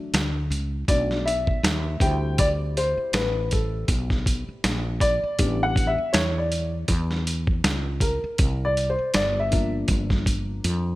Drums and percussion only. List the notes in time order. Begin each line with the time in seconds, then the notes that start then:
0.14 snare, closed hi-hat
0.52 closed hi-hat
0.88 kick, closed hi-hat
1.11 snare
1.28 closed hi-hat
1.47 kick
1.64 snare, closed hi-hat
2.00 kick, closed hi-hat
2.38 kick, closed hi-hat
2.77 closed hi-hat
3.13 snare, closed hi-hat
3.51 kick, closed hi-hat
3.88 kick, closed hi-hat
4.10 kick, snare
4.26 kick, closed hi-hat
4.64 snare, closed hi-hat
5.00 kick, closed hi-hat
5.39 kick, closed hi-hat
5.76 kick, closed hi-hat
6.14 snare, closed hi-hat
6.52 closed hi-hat
6.88 kick, closed hi-hat
7.11 snare
7.27 closed hi-hat
7.47 kick
7.64 snare, closed hi-hat
8.00 kick, closed hi-hat
8.38 kick, closed hi-hat
8.77 closed hi-hat
9.14 snare, closed hi-hat
9.52 kick, closed hi-hat
9.88 kick, closed hi-hat
10.10 kick, snare
10.26 kick, closed hi-hat
10.64 closed hi-hat